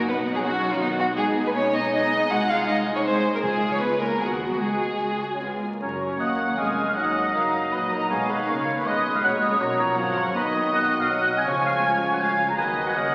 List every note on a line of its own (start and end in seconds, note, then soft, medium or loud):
0.00 0.42 D#4 medium
0.06 1.16 B1 medium
0.06 1.18 F#3 medium
0.06 0.34 B3 medium
0.06 0.44 B3 medium
0.06 2.29 D#4 medium
0.06 0.16 B4 medium
0.06 0.79 F#5 medium
0.34 0.44 G#3 medium
0.34 0.39 G#4 medium
0.43 0.70 F#3 medium
0.43 0.81 C#4 medium
0.43 0.80 F#4 medium
0.43 0.71 F#4 medium
0.71 0.81 F3 medium
0.71 0.81 F4 medium
0.80 0.99 D#3 medium
0.80 1.17 B3 medium
0.80 0.88 D#4 medium
0.80 1.17 F#4 medium
0.80 1.17 F#5 medium
0.99 1.18 F#3 medium
0.99 1.06 F#4 medium
1.17 2.26 B1 medium
1.17 1.45 G#3 medium
1.17 3.42 G#3 medium
1.17 1.89 B3 medium
1.17 1.89 D#4 medium
1.17 1.25 G#4 medium
1.17 1.89 G#5 medium
1.46 1.55 B3 medium
1.46 1.50 B4 medium
1.54 1.74 C#4 medium
1.54 1.73 C#5 medium
1.74 1.91 D#4 medium
1.74 1.92 D#5 loud
1.93 2.30 B3 medium
1.93 2.30 D#4 medium
1.93 2.29 D#4 medium
1.93 2.30 D#5 medium
1.93 2.28 G#5 medium
2.30 3.41 C2 medium
2.30 2.67 G#3 medium
2.30 3.41 D#4 medium
2.30 2.67 D#4 medium
2.30 2.49 F#4 medium
2.30 2.50 F#5 loud
2.30 2.67 G#5 medium
2.49 2.67 F4 medium
2.49 2.68 F5 medium
2.68 3.04 G#3 medium
2.68 2.76 D#4 medium
2.68 3.05 D#4 medium
2.68 2.76 D#5 medium
2.68 3.03 G#5 medium
2.96 3.05 C#4 medium
2.96 3.00 C#5 medium
3.04 3.42 G#3 medium
3.04 3.33 C4 medium
3.04 3.43 D#4 medium
3.04 3.33 C5 medium
3.04 3.42 G#5 medium
3.34 3.43 A#3 medium
3.34 3.38 A#4 medium
3.43 4.17 C#2 medium
3.43 3.97 C#3 medium
3.43 4.04 G#3 medium
3.43 3.71 G#3 medium
3.43 4.17 G#3 medium
3.43 4.04 F4 medium
3.43 4.17 F4 medium
3.43 3.71 G#4 medium
3.43 4.16 G#5 medium
3.72 3.81 C#4 medium
3.72 3.82 C#5 medium
3.81 4.00 B3 medium
3.81 4.01 B4 medium
4.01 4.20 A#3 medium
4.01 4.21 A#4 medium
4.20 4.60 D#2 medium
4.20 4.50 G#3 medium
4.20 4.60 B3 soft
4.20 4.61 B3 medium
4.20 4.59 F#4 soft
4.20 4.96 F#4 soft
4.20 4.29 G#4 medium
4.20 4.60 F#5 soft
4.50 4.60 F#3 medium
4.50 4.61 F#4 medium
4.60 5.59 C#2 soft
4.60 5.59 G#3 medium
4.60 5.40 G#3 soft
4.60 4.97 G#3 soft
4.60 5.40 F#4 soft
4.60 5.62 G#4 medium
4.60 5.39 G#5 soft
5.02 5.15 G#3 soft
5.32 5.41 C#4 soft
5.40 5.61 G#3 soft
5.40 5.61 B3 medium
5.40 5.61 F4 soft
5.40 5.61 G#5 soft
5.63 5.81 A#3 soft
5.81 6.17 F#1 soft
5.81 6.17 F#2 soft
5.81 6.17 F#3 soft
5.81 8.07 F#3 soft
5.81 6.54 C#4 soft
5.81 6.21 C#4 soft
5.81 6.93 C#4 soft
5.81 6.17 A#4 soft
5.81 5.90 A#4 soft
5.81 6.22 C#5 soft
5.81 5.99 A#5 medium
6.00 6.19 C#5 medium
6.00 6.19 C#6 medium
6.19 6.57 D#2 soft
6.19 6.59 A#3 soft
6.19 6.57 A#3 soft
6.19 6.56 A#4 soft
6.19 6.33 D#5 soft
6.19 6.55 F#5 soft
6.19 6.60 F#5 soft
6.19 6.26 D#6 medium
6.48 6.53 C#5 soft
6.48 6.58 C#6 soft
6.57 6.96 F1 soft
6.57 6.96 F2 soft
6.57 7.35 G#3 soft
6.57 6.98 G#3 soft
6.57 6.96 C#4 soft
6.57 6.96 A#4 soft
6.57 6.87 D#5 soft
6.57 6.96 F5 soft
6.57 6.97 G#5 medium
6.57 6.86 D#6 medium
6.87 6.92 F5 soft
6.87 6.92 F6 medium
6.96 7.34 D#2 soft
6.96 7.35 D#2 soft
6.96 7.35 F#3 soft
6.96 7.34 D#4 soft
6.96 9.25 D#4 soft
6.96 7.70 D#5 soft
6.96 8.08 D#5 soft
6.96 7.34 F#5 medium
6.96 7.06 F#5 medium
6.96 7.02 F#6 medium
7.15 7.25 D#5 medium
7.15 7.21 D#6 medium
7.34 7.72 F#1 soft
7.34 7.72 F#2 soft
7.34 8.12 F#3 soft
7.34 7.53 F#3 soft
7.34 8.09 D#4 soft
7.34 7.75 A#4 medium
7.34 7.72 F5 medium
7.34 7.72 A#5 medium
7.54 8.09 F#3 soft
7.72 8.10 A#1 medium
7.72 8.10 A#2 soft
7.72 7.94 B4 medium
7.72 8.46 D#5 soft
7.72 8.11 D#5 soft
7.72 7.92 B5 medium
7.91 8.13 A#4 medium
7.91 8.10 A#5 medium
8.10 8.48 B1 medium
8.10 8.48 B2 medium
8.10 9.22 D#3 medium
8.10 8.48 G#3 soft
8.10 8.50 B3 soft
8.10 8.47 D#4 soft
8.10 8.32 G#4 medium
8.10 8.88 C#5 soft
8.10 8.84 F5 medium
8.10 8.29 G#5 medium
8.29 8.51 B4 medium
8.29 8.48 B5 medium
8.48 8.85 C#2 medium
8.48 8.85 C#3 medium
8.48 8.86 A#3 soft
8.48 8.87 A#3 soft
8.48 9.22 C#4 soft
8.48 8.86 A#4 soft
8.48 8.77 C#5 medium
8.48 8.54 C#6 medium
8.77 8.88 B4 medium
8.77 8.86 B5 medium
8.85 9.23 B1 medium
8.85 9.23 B2 medium
8.85 9.61 G#3 medium
8.85 9.23 G#3 medium
8.85 9.24 B4 soft
8.85 9.63 B4 medium
8.85 9.23 D#5 medium
8.85 9.17 D#5 medium
8.85 9.14 D#6 medium
9.15 9.23 F5 medium
9.15 9.19 F6 medium
9.23 9.60 A#1 medium
9.23 9.61 A#2 medium
9.23 9.61 F#3 medium
9.23 11.47 F#3 medium
9.23 9.60 C#4 soft
9.23 10.33 C#4 medium
9.23 9.97 C#5 medium
9.23 9.60 C#5 medium
9.23 9.32 F#5 medium
9.23 9.29 F#6 medium
9.42 9.51 D#5 medium
9.42 9.61 D#6 medium
9.61 9.97 B1 medium
9.61 9.98 B2 medium
9.61 9.79 F#3 medium
9.61 10.00 F#3 medium
9.61 9.98 D#4 soft
9.61 10.19 A#4 medium
9.61 9.97 C#5 medium
9.61 9.81 D#5 medium
9.61 10.17 A#5 medium
9.80 9.98 F3 medium
9.80 9.98 C#5 medium
9.98 10.35 G#1 medium
9.98 10.35 G#2 medium
9.98 10.35 F3 medium
9.98 10.36 F#3 medium
9.98 10.36 C#4 medium
9.98 10.35 A#4 medium
9.98 10.38 C#5 medium
9.98 10.35 F#5 medium
10.16 10.36 C#5 medium
10.16 10.35 C#6 medium
10.35 11.42 B1 medium
10.35 11.43 B2 medium
10.35 10.71 D#3 soft
10.35 11.43 B3 soft
10.35 11.47 D#4 medium
10.35 11.43 F#4 medium
10.35 10.54 B4 medium
10.35 11.44 D#5 medium
10.35 11.43 D#5 medium
10.35 11.30 D#5 medium
10.35 10.41 B5 medium
10.54 10.73 D#5 medium
10.54 10.60 D#6 medium
10.72 11.09 D#3 medium
10.72 11.03 F#5 medium
10.72 11.00 F#6 medium
11.01 11.09 F5 medium
11.01 11.10 F6 medium
11.10 11.48 F#3 medium
11.10 11.39 F#5 medium
11.10 11.37 F#6 medium
11.37 11.46 G#5 medium
11.37 11.41 G#6 medium
11.46 12.59 C#2 medium
11.46 12.58 C#3 medium
11.46 12.31 F3 medium
11.46 12.41 F3 medium
11.46 12.55 G#3 soft
11.46 12.41 C#4 medium
11.46 12.55 F4 medium
11.46 12.54 C#5 medium
11.46 12.30 C#5 medium
11.46 11.55 C#5 medium
11.46 12.21 G#5 medium
11.46 11.65 C#6 medium
11.65 11.74 F5 medium
11.65 11.71 F6 medium
11.83 12.11 G#5 medium
11.83 11.90 G#6 medium
12.12 12.16 F#5 medium
12.12 12.21 F#6 medium
12.21 12.58 F5 medium
12.21 12.51 G#5 medium
12.21 12.49 G#6 medium
12.48 12.58 A#5 medium
12.48 12.57 A#5 medium
12.57 12.95 D#2 medium
12.57 12.95 D#3 medium
12.57 12.97 D#3 medium
12.57 12.93 F#3 medium
12.57 13.15 F#3 soft
12.57 12.94 B3 medium
12.57 13.15 F#4 medium
12.57 12.93 B4 medium
12.57 12.98 B4 soft
12.57 12.95 D#5 medium
12.57 12.86 G#5 medium
12.57 12.64 G#6 medium
12.86 12.91 F#5 medium
12.86 12.95 F#6 medium
12.95 13.15 C#2 medium
12.95 13.15 C#3 medium
12.95 13.15 F#3 soft
12.95 13.15 F#3 medium
12.95 13.15 A#3 medium
12.95 13.15 A#4 soft
12.95 13.15 D#5 medium
12.95 13.15 F#5 medium
12.95 13.15 D#6 medium